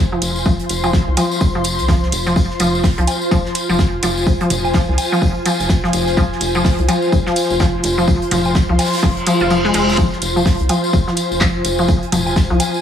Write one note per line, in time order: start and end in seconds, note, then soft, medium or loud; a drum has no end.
0.00 0.19 F1 medium
0.00 12.81 F4 medium
0.00 12.81 C5 medium
0.00 3.16 C6 medium
0.12 0.19 F3 medium
0.22 0.56 F1 loud
0.22 closed hi-hat medium
0.22 tambourine medium
0.36 tambourine medium
0.46 0.49 F3 medium
0.46 kick loud
0.46 tambourine medium
0.46 tambourine soft
0.59 closed hi-hat soft
0.69 1.03 F1 medium
0.69 closed hi-hat medium
0.69 tambourine medium
0.84 0.90 F3 medium
0.84 tambourine medium
0.84 low woodblock medium
0.93 kick loud
0.93 snare loud
0.93 tambourine medium
0.93 tambourine soft
1.07 1.15 C2 medium
1.17 1.21 F3 medium
1.17 closed hi-hat medium
1.17 tambourine medium
1.17 low woodblock medium
1.31 tambourine medium
1.41 1.80 F1 loud
1.41 kick loud
1.41 tambourine medium
1.41 tambourine soft
1.55 1.62 F3 medium
1.64 closed hi-hat medium
1.64 tambourine medium
1.79 2.09 C2 medium
1.79 closed hi-hat soft
1.79 tambourine medium
1.88 1.95 F3 medium
1.88 kick loud
1.88 snare loud
1.88 tambourine medium
2.03 snare soft
2.12 2.46 F1 loud
2.12 closed hi-hat medium
2.12 tambourine loud
2.12 tambourine medium
2.26 2.31 F3 medium
2.26 snare soft
2.26 tambourine medium
2.36 kick loud
2.36 tambourine soft
2.36 tambourine medium
2.50 snare soft
2.60 2.94 F1 medium
2.60 2.64 F3 medium
2.60 closed hi-hat medium
2.60 tambourine medium
2.75 tambourine soft
2.84 kick loud
2.84 snare loud
2.84 open hi-hat medium
2.84 tambourine soft
2.98 3.06 C2 medium
2.98 3.04 F3 medium
2.98 closed hi-hat soft
3.07 closed hi-hat medium
3.07 tambourine medium
3.07 low woodblock medium
3.13 6.97 G#5 medium
3.21 tambourine soft
3.31 3.43 F1 loud
3.31 3.35 F3 medium
3.31 kick loud
3.31 tambourine medium
3.31 tambourine soft
3.46 snare medium
3.55 closed hi-hat medium
3.55 tambourine medium
3.69 4.00 F1 medium
3.69 3.76 F3 medium
3.69 tambourine soft
3.78 kick loud
3.78 snare loud
3.78 tambourine soft
3.78 tambourine medium
4.03 4.37 F1 loud
4.03 4.07 F3 medium
4.03 closed hi-hat medium
4.03 tambourine medium
4.03 tambourine loud
4.17 tambourine medium
4.26 kick loud
4.26 tambourine soft
4.26 tambourine medium
4.41 4.47 F3 medium
4.41 closed hi-hat soft
4.50 4.84 F1 loud
4.50 closed hi-hat medium
4.50 mid tom medium
4.50 tambourine medium
4.65 tambourine soft
4.65 low woodblock medium
4.74 4.78 F3 medium
4.74 kick loud
4.74 snare loud
4.74 tambourine soft
4.74 tambourine medium
4.88 4.96 C2 medium
4.98 closed hi-hat medium
4.98 tambourine medium
4.98 low woodblock medium
5.12 5.19 F3 medium
5.12 tambourine soft
5.21 5.33 F1 loud
5.21 kick loud
5.21 tambourine soft
5.21 tambourine medium
5.45 5.49 F3 medium
5.45 closed hi-hat medium
5.45 tambourine medium
5.60 5.90 F1 medium
5.60 closed hi-hat soft
5.60 tambourine medium
5.69 kick loud
5.69 snare loud
5.69 tambourine medium
5.84 5.90 F3 medium
5.84 snare soft
5.93 6.27 F1 loud
5.93 closed hi-hat medium
5.93 tambourine medium
6.07 snare soft
6.07 tambourine medium
6.17 6.21 F3 medium
6.17 kick loud
6.17 tambourine soft
6.17 tambourine medium
6.32 snare soft
6.41 6.75 F1 medium
6.41 closed hi-hat medium
6.41 tambourine medium
6.55 6.62 F3 medium
6.55 tambourine medium
6.65 kick loud
6.65 snare loud
6.65 open hi-hat medium
6.65 tambourine soft
6.79 6.87 C2 medium
6.79 closed hi-hat soft
6.88 6.92 F3 medium
6.88 closed hi-hat medium
6.88 tambourine medium
6.88 low woodblock medium
6.93 10.77 C6 medium
7.02 tambourine soft
7.12 7.24 F1 loud
7.12 kick loud
7.12 tambourine medium
7.12 tambourine soft
7.26 7.33 F3 medium
7.26 snare medium
7.36 closed hi-hat medium
7.36 tambourine medium
7.36 tambourine loud
7.50 7.81 F1 medium
7.50 tambourine medium
7.60 7.64 F3 medium
7.60 kick loud
7.60 snare loud
7.60 tambourine medium
7.60 tambourine soft
7.83 8.18 F1 loud
7.83 closed hi-hat medium
7.83 tambourine medium
7.98 8.04 F3 medium
7.98 tambourine medium
8.08 kick loud
8.08 tambourine medium
8.08 tambourine soft
8.22 closed hi-hat soft
8.31 8.65 F1 medium
8.31 8.35 F3 medium
8.31 closed hi-hat medium
8.31 mid tom medium
8.31 tambourine medium
8.45 tambourine medium
8.45 low woodblock medium
8.55 kick loud
8.55 snare loud
8.55 tambourine soft
8.55 tambourine medium
8.69 8.77 C2 medium
8.69 8.76 F3 medium
8.79 snare medium
8.79 closed hi-hat medium
8.79 open hi-hat medium
8.79 tambourine medium
8.79 low woodblock medium
8.86 snare medium
8.86 open hi-hat medium
8.93 snare medium
8.93 open hi-hat medium
8.93 tambourine soft
8.98 snare medium
8.98 open hi-hat medium
9.03 9.14 D#1 loud
9.03 9.07 F3 medium
9.03 kick loud
9.03 snare loud
9.03 open hi-hat medium
9.03 tambourine soft
9.03 reverse cymbal medium
9.17 closed hi-hat soft
9.27 9.33 F3 medium
9.27 closed hi-hat medium
9.27 tambourine medium
9.40 9.71 F1 medium
9.40 9.45 F4 medium
9.40 tambourine soft
9.50 9.57 F3 medium
9.50 tambourine medium
9.50 tambourine soft
9.65 9.71 G#3 loud
9.65 snare medium
9.74 10.08 F1 loud
9.74 9.84 G#3 loud
9.74 closed hi-hat medium
9.74 tambourine medium
9.88 snare soft
9.88 tambourine medium
9.98 10.02 F3 medium
9.98 kick loud
9.98 tambourine medium
9.98 tambourine soft
10.13 snare soft
10.22 10.56 F1 loud
10.22 closed hi-hat medium
10.22 tambourine medium
10.36 10.43 F3 medium
10.36 tambourine soft
10.46 kick loud
10.46 snare loud
10.46 open hi-hat medium
10.46 tambourine soft
10.59 10.68 C2 medium
10.59 closed hi-hat soft
10.69 10.73 F3 medium
10.69 closed hi-hat medium
10.69 tambourine medium
10.69 low woodblock medium
10.74 12.81 G#5 medium
10.84 tambourine medium
10.93 11.05 F1 loud
10.93 kick loud
10.93 tambourine soft
10.93 tambourine medium
11.07 11.14 F3 medium
11.07 snare medium
11.17 closed hi-hat medium
11.17 tambourine medium
11.31 11.62 F1 medium
11.31 tambourine medium
11.40 11.45 F3 medium
11.40 kick loud
11.40 snare loud
11.40 clap loud
11.40 tambourine soft
11.40 tambourine medium
11.64 11.98 F1 loud
11.64 closed hi-hat medium
11.64 tambourine medium
11.78 11.85 F3 medium
11.78 tambourine medium
11.88 kick loud
11.88 tambourine medium
11.88 tambourine soft
12.03 closed hi-hat soft
12.12 12.46 F1 loud
12.12 12.16 F3 medium
12.12 closed hi-hat medium
12.12 mid tom medium
12.12 tambourine medium
12.12 tambourine loud
12.27 tambourine medium
12.27 low woodblock medium
12.36 kick loud
12.36 snare loud
12.36 tambourine soft
12.36 tambourine medium
12.50 12.58 C2 medium
12.50 12.57 F3 medium
12.60 closed hi-hat medium
12.60 tambourine medium
12.60 tambourine loud
12.60 low woodblock medium
12.74 tambourine medium